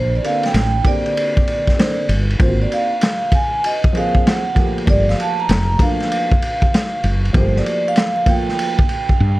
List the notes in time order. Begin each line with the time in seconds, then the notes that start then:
Already playing: A#1 C5
0.16 D5
0.23 D3 A#3 C4 A4 F5, ride
0.43 G5, snare, ride
0.54 A1, snare, hi-hat pedal, ride
0.84 D3 A#3 C4 G4 D5, kick, ride
1.06 ride
1.17 ride
1.37 kick
1.47 ride
1.67 kick, snare, ride
1.76 D3 A#3 C4 C5, snare, hi-hat pedal, ride
2.09 G1, ride
2.30 ride
2.39 G#1 A#3 C4 F4 C5, kick, ride
2.48 F#4
2.62 D5
2.72 F5, ride
3.01 snare, hi-hat pedal, ride
3.32 G#5, kick, ride
3.64 D#5, ride
3.84 kick
3.93 F3 A#3 C4 G#4, ride
3.97 F5
4.15 kick
4.27 F#5, snare, hi-hat pedal, ride
4.55 F3 A3 A#3 G4, kick, ride
4.78 ride
4.86 G1 F3 A3 A#3 G4 D5, kick, ride
5.09 F5, snare
5.20 A5, ride
5.40 A#5
5.49 F1, snare, hi-hat pedal, ride
5.78 F3 A3 A#3 D4 F5, kick, ride
6.00 snare, ride
6.12 ride
6.32 kick
6.42 ride
6.62 kick, ride
6.74 snare, hi-hat pedal, ride
7.03 F#1, ride
7.25 ride
7.33 G1 F3 A3 A#3 G4 C5, kick, ride
7.56 D5, snare
7.66 ride
7.88 F5
7.96 snare, hi-hat pedal, ride
8.26 F3 A3 A#3 F4 G5, kick, ride
8.49 snare
8.59 ride
8.79 kick
8.89 ride
9.09 kick
9.20 G2